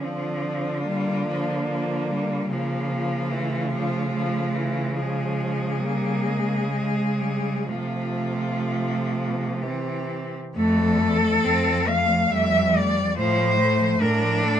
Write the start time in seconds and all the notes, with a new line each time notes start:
0.03 D3 F3 C4 F4
0.86 G3 A#3
1.28 F3
1.70 F3
2.11 G3
2.51 C#3 F3 A#3 F4
3.32 E3 A3
3.73 F3
4.14 F3
4.55 E3
4.96 F3 G#3 G#4
5.81 G3 A#3
6.26 G#3
6.72 G#3
7.19 G3
7.68 C3 F3 A3 F4
9.62 E3 C4 G4
10.56 F2 A3 A4
10.79 F3
11.00 A3
11.22 F3
11.43 F2 A3 C4
11.66 F3
11.87 A3 F5
12.09 F3
12.30 F2 G3 A3 E5
12.52 F3
12.74 A3 D5
12.96 F3
13.16 A2 F3 A3 C5
13.37 F3
13.57 A3
13.78 F3
14.00 A2 A3 D4 A#4
14.21 F3
14.43 A3 A4